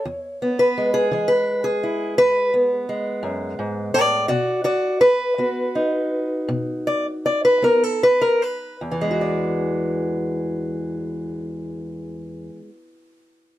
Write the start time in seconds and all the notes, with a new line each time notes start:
Already playing: C#5
0.05 E2
0.42 B3
0.59 B4
0.78 G#3
0.94 G#4
1.11 E3 G#3
1.28 B4
1.64 G#4
1.83 E4
2.18 E2 B4
2.54 B3
2.89 G#3
3.23 F#2
3.59 G#2
3.94 A2 B4 D5
4.28 B2 F#4 D5
4.64 F#4 D5
5.01 B4
5.38 B3 F#4
5.75 D#4
6.48 B2
6.87 D5
7.26 D5
7.45 B4
7.62 B3 A#4
7.83 A4
8.03 B4
8.22 A#4
8.42 B4
8.81 E2
8.92 E3
9.01 G#3
9.11 F#4
9.21 D5